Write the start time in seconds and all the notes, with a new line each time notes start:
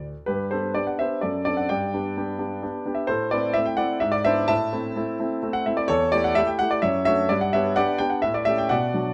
Already playing: D2
0.26 G2 G4 B4
0.51 B3 D4 G4 A4 C5
0.74 B3 D4 G4 D5
0.87 F#5
0.99 B3 D4 G4 C5 E5
1.21 F#2 A4 D5
1.45 C4 D4 A4 D5
1.57 F#5
1.69 G2 D5 G5
1.94 B3 D4 G4
2.17 B3 D4 G4
2.39 B3 D4 G4
2.63 B3 D4 G4
2.86 B3 D4 G4
2.95 E5
3.07 A2 A4 C5
3.31 A3 C4 E4 B4 D5
3.54 A3 C4 E4 E5
3.65 G5
3.77 A3 C4 E4 D5 F#5
4.00 G#2 E5
4.12 D5
4.25 B3 D4 E4 C5 E5
4.48 A2 E5 A5
4.73 A3 C4 E4
4.96 A3 C4 E4
5.20 A3 C4 E4
5.43 A3 C4 E4
5.53 F#5
5.66 A3 C4 E4 E5
5.77 D5
5.88 E2 A4 C#5
6.12 A3 E4 G4 D5
6.24 F#5
6.35 A3 E4 G4 E5
6.47 G5
6.59 A3 E4 G4 F#5
6.71 D5
6.82 F#2 C#5 E5
7.05 A3 D4 F#4 C#5 E5
7.29 G2 D5
7.41 F#5
7.53 B3 D4 G4 C#5 E5
7.76 B3 D4 G4 D5 F#5
7.98 B3 D4 G4 G5
8.10 F#5
8.22 A2 E5
8.34 D5
8.45 A3 C#4 G4 E5
8.58 G5
8.69 B2 D5 F#5
8.94 F#3 D4 F#4